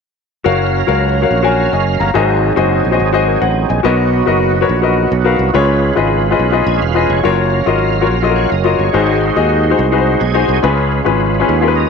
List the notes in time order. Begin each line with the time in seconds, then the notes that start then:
0.44 F#1 F#3 C#4 F#4 A#4 C#5 F5
0.87 C#2 F#4 A#4 C#5 F5
1.22 F#4 A#4 C#5 F5
1.31 A#1
1.43 F#4 A#4 C#5 G#5
1.73 F#1 D#5 G#5
2.00 G1 F5 A#5
2.14 G#1 G#2 F#3 C4 D#4 F#4 G#4 A#4 D#5
2.20 C5
2.56 F#1 F#4 G#4 C5 D#5
2.85 A#1
2.91 F#4 G#4 C5 D#5
3.00 G#1
3.13 F#4 G#4 C5 D#5
3.27 A#4 D#5
3.42 A1 C5 F#5
3.69 A#1 D#5 G#5
3.83 B1 B2 F#3 B3 D#4 F#4 G#4 A#4 B4 D#5
3.89 F#4
4.26 F#1 F#4 A#4 B4 D#5
4.61 F#4 A#4 B4 C#5
4.69 A#1
4.82 F#4 A#4 B4 D#5
5.12 B1
5.24 F#4 A#4 B4 F5
5.39 C2
5.54 C#2 C#3 G#3 C#4 F4 G#4 B4 C#5
5.96 G#1 F4 G#4 B4 D#5
6.30 F4 G#4 B4 D#5
6.39 B1
6.52 F4 G#4 B4 D#5
6.67 A#1 G#5
6.82 E1 F5
6.94 F4 G#4 B4 D#5
7.09 F1 C#5
7.23 F#1 F#3 C#4 F4 F#4 A#4 C#5 F5
7.66 G#1 F4 F#4 A#4 D#5
8.01 F4 F#4 A#4 C#5
8.09 A#1
8.23 F4 F#4 A4 D#5
8.28 A#4
8.36 C#5 F#5
8.51 F#1 A#4 D#5
8.64 F4 F#4 A#4 D#5
8.79 G1 G#4 C#5
8.93 G#1 G#2 G#3 D#4 F#4 G#4 A#4 C5
8.99 C5
9.36 D#2 D#4 F#4 G#4 D#5
9.70 D#4 F#4 G#4 C5
9.79 C2
9.92 D#4 F#4 G#4 B4
9.98 C5
10.20 B1 G#5
10.34 D#4 F#4 G#4 C5
10.48 C2
10.63 C#2 C#3 G#3 C#4 E4 F4 G#4 B4
10.68 F4
11.05 G#1 C#4 F4 G#4 B4
11.40 C#4 F4 G#4 B4
11.49 D#2
11.61 C#4 F4 G#4 A#4
11.68 B4
11.75 A#4 D#5